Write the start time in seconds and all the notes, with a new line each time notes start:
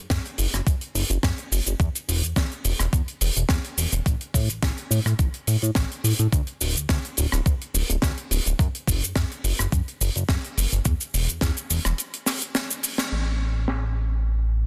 0.10 F#2, kick, snare, closed hi-hat, cabasa
0.25 closed hi-hat
0.38 F#1, open hi-hat, cabasa
0.53 F#1, cross-stick, closed hi-hat, cabasa
0.67 F#2, kick, closed hi-hat, cabasa
0.81 closed hi-hat
0.95 F#1, open hi-hat, cabasa
1.10 F#1, closed hi-hat, cabasa
1.23 F#2, kick, snare, closed hi-hat, cabasa
1.38 closed hi-hat
1.52 F#1, open hi-hat, cabasa
1.66 F#1, closed hi-hat, cabasa
1.80 E2, kick, closed hi-hat, cabasa
1.95 closed hi-hat, cabasa
2.08 E1, open hi-hat, cabasa
2.23 E2, closed hi-hat, cabasa
2.36 E2, kick, snare, closed hi-hat, cabasa
2.51 closed hi-hat
2.65 E1, open hi-hat, cabasa
2.79 E1, cross-stick, closed hi-hat, cabasa
2.93 E2, kick, closed hi-hat, cabasa
3.08 closed hi-hat
3.21 E1, open hi-hat, cabasa
3.36 E1, closed hi-hat, cabasa
3.49 E2, kick, snare, closed hi-hat, cabasa
3.64 closed hi-hat
3.77 E1, open hi-hat, cabasa
3.92 E1, closed hi-hat, cabasa
4.06 A1, kick, closed hi-hat, cabasa
4.21 closed hi-hat
4.34 A2, kick, open hi-hat, cabasa
4.49 A1, closed hi-hat, cabasa
4.62 A1, kick, snare, closed hi-hat, cabasa
4.78 closed hi-hat
4.91 A2, open hi-hat, cabasa
5.06 A2, cross-stick, closed hi-hat, cabasa
5.19 A1, kick, closed hi-hat, cabasa
5.34 closed hi-hat
5.47 A2, open hi-hat, cabasa
5.62 A2, closed hi-hat, cabasa
5.75 A1, kick, snare, closed hi-hat, cabasa
5.91 closed hi-hat
6.04 A2, open hi-hat, cabasa
6.19 A2, closed hi-hat, cabasa
6.32 D2, kick, closed hi-hat, cabasa
6.47 closed hi-hat
6.61 D1, open hi-hat, cabasa
6.75 D2, closed hi-hat, cabasa
6.89 D2, kick, snare, closed hi-hat, cabasa
7.05 closed hi-hat
7.17 D1, open hi-hat, cabasa
7.32 D1, cross-stick, closed hi-hat, cabasa
7.46 D2, kick, closed hi-hat, cabasa
7.61 closed hi-hat
7.74 D1, open hi-hat, cabasa
7.89 D1, closed hi-hat, cabasa
8.02 D2, kick, snare, closed hi-hat, cabasa
8.17 closed hi-hat
8.31 D1, open hi-hat, cabasa
8.46 D1, closed hi-hat, cabasa
8.59 F#2, kick, closed hi-hat, cabasa
8.75 closed hi-hat
8.87 F#1, kick, open hi-hat, cabasa
9.03 F#2, closed hi-hat, cabasa
9.16 F#2, kick, snare, closed hi-hat, cabasa
9.31 closed hi-hat
9.44 F#1, open hi-hat, cabasa
9.59 F#1, cross-stick, closed hi-hat, cabasa
9.72 F#2, kick, closed hi-hat, cabasa
9.88 closed hi-hat
10.01 F#1, open hi-hat, cabasa
10.15 F#1, closed hi-hat, cabasa
10.29 F#2, kick, snare, closed hi-hat, cabasa
10.44 closed hi-hat
10.57 F#1, open hi-hat, cabasa
10.72 F#1, closed hi-hat, cabasa
10.85 E2, kick, closed hi-hat, cabasa
11.01 closed hi-hat, cabasa
11.14 E1, open hi-hat, cabasa
11.29 E2, closed hi-hat, cabasa
11.41 E2, kick, snare, closed hi-hat, cabasa
11.57 closed hi-hat, cabasa
11.70 E1, open hi-hat, cabasa
11.85 E1, cross-stick, closed hi-hat, cabasa
11.98 closed hi-hat, cabasa
12.13 closed hi-hat
12.26 snare, open hi-hat, cabasa
12.41 closed hi-hat, cabasa
12.55 snare, closed hi-hat, cabasa
12.70 closed hi-hat, cabasa
12.83 open hi-hat, cabasa
12.98 snare, closed hi-hat, cabasa
13.12 A1
13.68 snare